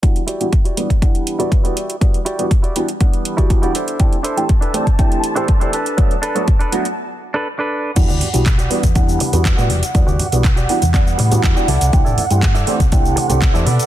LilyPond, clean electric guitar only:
\new Staff \with { instrumentName = "Clean electric guitar" } { \time 4/4 \key e \minor \tempo 4 = 121 r8 <e' fis' g' d''>8 r16 <e' fis' g' d''>16 r4 r16 <e' fis' g' d''>16 r16 <e' fis' g' d''>8. | r8 <e' fis' g' d''>8 r16 <e' fis' g' d''>16 r4 r16 <e' fis' g' d''>16 r16 <e' fis' g' d''>16 <d' e' a' c''>8~ | <d' e' a' c''>16 r16 <d' e' a' c''>8 r16 <d' e' a' b'>16 r4 r16 <d' e' a' c''>16 r16 <d' e' a' c''>16 <d' a' b'>8~ | <d' a' b'>16 r16 <d' a' b'>8 r16 <d' a' b'>16 r4 r16 <d' a' b'>16 r16 <d' a' b'>8. |
r16 <fis' g' d''>16 r8. <fis' g' d''>16 r4. r16 <fis' g' d''>8 r16 | r16 <fis' g' d''>16 r8. <fis' g' d''>16 r4. r16 <fis' g' d''>16 <e' a' d''>8 | r16 <e' a' d''>16 r8. <e' a' d''>16 r4. r16 <e' a' d''>16 <a' b' d''>8 | }